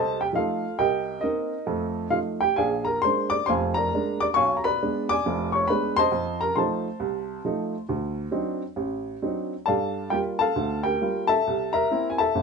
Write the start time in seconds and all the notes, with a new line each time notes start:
Already playing: C2 C3 A4 C5 D#5 A5
0.21 G4 G5
0.33 F3 A3 D#4 F4 F5
0.37 A4
0.79 C2 G4 A#4 D#5 G5
1.21 A#3 C4 D#4 A#4 D#5
1.66 F2 A3
2.10 F3 A3 D#4 F4 F5
2.41 G4 G5
2.56 A#1 G#4 D5 F5 G#5
2.85 A#4 A#5
3.02 G#3 A#3 D4 C5 C6
3.30 D5 D6
3.46 F1 F2 C5 F5 G#5 C6
3.74 A#4 D5 A#5
3.93 G#3 A#3 D4
4.20 D5 D6
4.34 B1 C#5 F5 G#5 C#6
4.57 A#5
4.64 B4 D5 B5
4.83 G#3 B3 D4
5.09 D5 G#5 D6
5.26 F1 F2
5.52 C#5 C#6
5.68 G#3 B3 D4 B4 B5
5.96 C5 D#5 A5 C6
6.12 F2
6.41 A#4 A#5
6.56 F3 A3 D#4 C5 A5 C6
7.00 C2
7.45 F3 A3 D#4
7.89 D2
8.31 F#3 C4 D4 D#4
8.76 A1
9.22 F#3 C4 D4 D#4
9.66 G2 A4 D5 F5 A5
10.10 G3 A#3 F4 G4 G5
10.39 A4 F5 A5
10.56 D2
10.83 G4 A#4 G5
11.01 G3 A#3 F4
11.27 A4 E5 A5
11.47 C2
11.73 A#4 E5 A#5
11.91 A#3 C4 E4
12.10 G#5
12.18 A4 E5 A5
12.35 G1